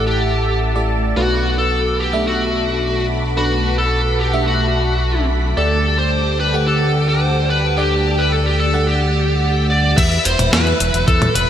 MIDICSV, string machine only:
0, 0, Header, 1, 2, 480
1, 0, Start_track
1, 0, Key_signature, 1, "minor"
1, 0, Tempo, 550459
1, 1020, Time_signature, 4, 2, 24, 8
1, 10025, End_track
2, 0, Start_track
2, 0, Title_t, "String machine"
2, 0, Program_c, 0, 50
2, 0, Note_on_c, 0, 69, 80
2, 0, Note_on_c, 0, 76, 70
2, 0, Note_on_c, 0, 81, 69
2, 0, Note_on_c, 0, 86, 89
2, 986, Note_off_c, 0, 76, 0
2, 986, Note_off_c, 0, 81, 0
2, 1020, Note_on_c, 0, 78, 75
2, 1021, Note_on_c, 0, 83, 73
2, 4825, Note_off_c, 0, 78, 0
2, 4826, Note_off_c, 0, 69, 0
2, 4826, Note_off_c, 0, 83, 0
2, 4826, Note_off_c, 0, 86, 0
2, 4860, Note_on_c, 0, 86, 89
2, 4861, Note_on_c, 0, 67, 70
2, 4861, Note_on_c, 0, 69, 79
2, 4861, Note_on_c, 0, 74, 74
2, 6761, Note_off_c, 0, 86, 0
2, 6781, Note_on_c, 0, 88, 86
2, 8665, Note_off_c, 0, 74, 0
2, 8666, Note_off_c, 0, 67, 0
2, 8666, Note_off_c, 0, 69, 0
2, 8681, Note_off_c, 0, 88, 0
2, 8699, Note_on_c, 0, 54, 82
2, 8700, Note_on_c, 0, 71, 74
2, 8700, Note_on_c, 0, 76, 91
2, 8701, Note_on_c, 0, 64, 74
2, 10025, Note_off_c, 0, 54, 0
2, 10025, Note_off_c, 0, 64, 0
2, 10025, Note_off_c, 0, 71, 0
2, 10025, Note_off_c, 0, 76, 0
2, 10025, End_track
0, 0, End_of_file